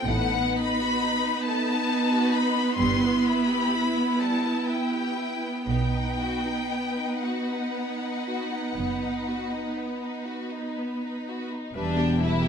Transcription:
0.06 A1 A2 A3 B3 D#4 B4 F#5
0.33 B3
0.55 D#4 B5
0.80 F#4
1.03 D#4
1.25 B3
1.45 A3 A5
1.71 B3
1.92 D#4
2.13 F#4
2.34 D#4 B5
2.56 B3
2.77 G1 G2 G3 E4 C6
3.01 B3
3.26 E4 B5
3.48 G4
3.72 E4
3.96 B3
4.18 G3 A5
4.43 B3
4.66 E4 G5
4.92 G4
5.16 E4
5.42 B3
5.68 B1 B2 B3 D#4 B4 G5
5.94 D#4
6.19 F#4
6.45 D#4
6.71 B3
6.98 D#4
7.24 F#4 F#5
7.51 D#4
7.75 B3
8.00 D#4
8.28 F#4
8.52 D#4
8.76 F#1 F#2 B3
9.03 D#4
9.27 F#4
9.51 D#4
9.77 B3
10.02 D#4
10.27 F#4
10.51 D#4
10.76 B3
11.04 D#4
11.28 F#4
11.51 D#4
11.74 E1 E2 G3 D4 B4 E5
11.97 B3 G4 G5
12.20 G3 E4 B4 E5
12.42 B3 G4 G5

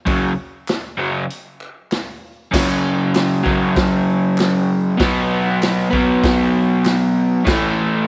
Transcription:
0.06 F#2 C#3 F#3, kick, open hi-hat
0.68 snare, clap, open hi-hat
0.98 F#2 C#3 F#3
1.30 open hi-hat
1.61 clap
1.91 snare, clap, open hi-hat
2.52 F#2 C#3, kick, snare, crash
2.57 F#3
3.14 snare, clap, open hi-hat
3.43 C#3 F#3, kick
3.48 F#2
3.76 kick, snare, open hi-hat
4.38 snare, clap, open hi-hat
4.97 B2 F#3, kick, snare, open hi-hat
5.03 B3
5.62 snare, clap, open hi-hat
5.91 F#3 B3, kick
5.96 B2
6.24 kick, snare, open hi-hat
6.85 snare, clap, open hi-hat
7.45 A2 E3, kick, snare, crash
7.49 A3

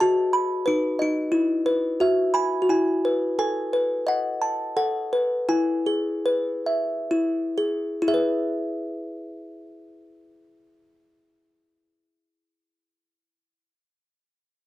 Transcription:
Already playing: B4 D#5
0.00 F#4 A5
0.33 B5
0.66 D#4 B4
0.99 D#4 D#5
1.32 E4
1.66 B4
2.00 F#4 E5
2.34 G#5 B5
2.62 F#4
2.69 E4 G#5
3.05 B4
3.39 A4 G#5
3.73 B4
4.07 D#5 F#5
4.42 A5
4.77 A4 F#5
5.13 B4
5.49 E4 G#5
5.86 G#4
6.26 B4
6.66 E5
7.11 E4
7.58 G#4
8.02 E4
8.08 G#4 E5
8.14 B4

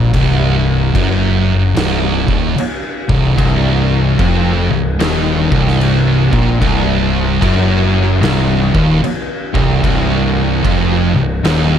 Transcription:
Already playing: A#1 A#2
0.13 C1 C2, kick, crash
0.93 F#1 F#2, kick, crash
1.74 C1 C2, snare, crash
2.27 D#1 D#2, kick
2.56 muted distorted electric guitar stroke, muted picked electric bass stroke, crash
3.08 C1 C2, kick
3.36 C1 C2, kick, crash
4.18 F1 F2, kick, crash
4.70 C1 C2
5.00 D#1 D#2, snare, crash
5.52 C1 C2, kick
5.68 snare
5.81 crash
6.32 A#1 A#2, kick
6.61 C1 C2, kick, crash
7.41 F#1 F#2, kick, crash
8.22 C1 C2, snare, crash
8.74 D#1 D#2, kick
9.02 muted distorted electric guitar stroke, muted picked electric bass stroke, crash
9.54 C1 C2, kick
9.82 C1 C2, kick, crash
10.63 F1 F2, kick, crash
11.15 C1 C2
11.43 D#1 D#2, snare, crash

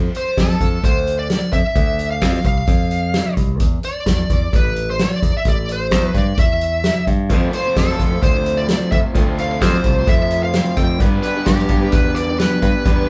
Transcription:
0.15 C5, closed hi-hat
0.37 F2 A4, kick, snare, closed hi-hat
0.49 snare
0.61 F2, kick, closed hi-hat
0.84 D2 C5, kick, closed hi-hat
1.07 closed hi-hat
1.19 D5
1.30 snare, closed hi-hat
1.53 F2 E5, kick, closed hi-hat
1.76 D2, kick, closed hi-hat
1.99 closed hi-hat
2.11 F5
2.21 F2, kick, snare, closed hi-hat
2.33 snare
2.44 C2 F5, kick, closed hi-hat
2.67 F2, kick, closed hi-hat
2.91 closed hi-hat
3.14 snare, closed hi-hat
3.37 C2, kick, closed hi-hat
3.60 E2, kick, closed hi-hat
3.83 D5, closed hi-hat
4.06 E2, kick, snare, closed hi-hat
4.30 E2, kick, closed hi-hat
4.53 A1 B4, kick, closed hi-hat
4.76 closed hi-hat
4.90 C5
4.99 D5, snare, closed hi-hat
5.22 E2, kick, closed hi-hat
5.37 E5
5.45 A1 D5, kick, closed hi-hat
5.69 C5, closed hi-hat
5.91 E2, kick, snare, closed hi-hat
6.14 G2 D5, kick, closed hi-hat
6.38 E2 E5, kick, closed hi-hat
6.61 closed hi-hat
6.84 snare, closed hi-hat
7.07 G2, kick, closed hi-hat
7.29 F2 F3 A3 C4 F4 A4 C5, kick, closed hi-hat
7.51 A3 C4 F4 C5, closed hi-hat
7.63 C4 F4 C5
7.76 F2 F3 A3 C4 F4 A4 C5, kick, snare, closed hi-hat
7.89 snare
7.98 F2 A3 C4 F4 C5, kick, closed hi-hat
8.11 C4 F4 C5
8.22 D2 C5, kick, closed hi-hat
8.32 C4 F4 C5
8.46 closed hi-hat
8.56 C4 F4 C5 D5
8.68 F3 A3 C4 F4 C5, snare, closed hi-hat
8.92 F2 A3 C4 F4 C5 E5, kick, closed hi-hat
9.14 D2 F3 A3 C4 F4 A4 C5, kick, closed hi-hat
9.38 A3 C4 F4 C5 F5, closed hi-hat
9.49 C4 F4 C5
9.61 F2 F3 A3 C4 F4 C5, kick, snare, closed hi-hat
9.73 F4 C5, snare
9.78 C4
9.84 C2 A3 C4 F4 C5, kick, closed hi-hat
9.95 C4 F4 C5
10.07 F2 E5, kick, closed hi-hat
10.18 C4 F4 C5
10.30 closed hi-hat
10.41 C4 F4 C5 F5
10.53 F3 A3 C4 F4 C5, snare, closed hi-hat
10.77 F2 A3 C4 F4 C5 G5, kick, closed hi-hat
11.00 G2 G3 B3 D4 G4 B4, kick, closed hi-hat
11.23 G3 D4 G4 B4, closed hi-hat
11.34 D4 G4 B4
11.46 G2 G3 D4 G4 B4, kick, snare, closed hi-hat
11.58 snare
11.69 G2 G3 D4 G4, kick, closed hi-hat
11.73 B4
11.81 D4 G4 B4
11.92 E2 B4, kick, closed hi-hat
12.04 D4 G4 B4
12.15 D5, closed hi-hat
12.28 D4 G4 B4
12.39 G3 D4 G4 B4, snare, closed hi-hat
12.60 G2 G3 D4 G4 B4, kick, closed hi-hat
12.85 E2 G3 B3 D4 G4 B4, kick, closed hi-hat

